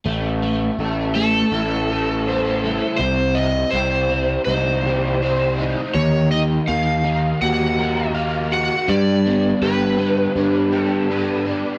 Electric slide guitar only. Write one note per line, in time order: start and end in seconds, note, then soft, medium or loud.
1.15 3.05 A4 medium
2.98 3.37 C5 loud
3.35 3.74 D#5 medium
3.71 4.42 C5 medium
4.45 5.52 C5 medium
5.94 6.31 C#5 medium
6.31 6.41 D#5 medium
6.68 7.41 F5 medium
7.42 8.11 F#5 medium
8.53 8.91 F#5 loud
8.89 9.65 D5 loud
9.63 10.82 B4 medium
10.82 11.43 A4 medium